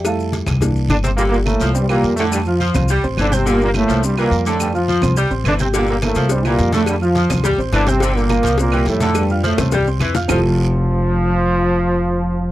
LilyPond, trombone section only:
\new Staff \with { instrumentName = "Trombone section" } { \clef bass \time 4/4 \key f \major \tempo 4 = 211 r2. <d d'>8 <c c'>8 | <bes, bes>8 <bes, bes>8 <a, a>4 <g, g>8 <bes, bes>4 <a, a>8 | <g, g>8 <f f'>4. r4 <d d'>8 <c c'>8 | <bes, bes>8 <bes, bes>8 <a, a>4 <g, g>8 <bes, bes>4 <a, a>8 |
<g, g>8 <f f'>4. r4 <d d'>8 <c c'>8 | <bes, bes>8 <bes, bes>8 <a, a>4 <g, g>8 <bes, bes>4 <a, a>8 | <g, g>8 <f f'>4. r4 <d d'>8 <c c'>8~ | <c c'>8 <bes, bes>4. <bes, bes>4 <a, a>4 |
<g, g>4 <a, a>4 r2 | f1~ | f1 | }